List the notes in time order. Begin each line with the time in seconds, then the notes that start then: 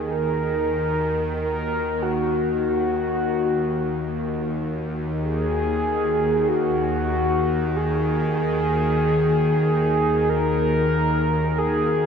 Already playing: D#2 D#3 A#3 F#4 A#4
0.11 A#4
1.39 A#4
2.02 F#4
2.66 F#4
5.21 G#4
6.48 F#4
7.76 G#4
10.29 A#4
11.58 G#4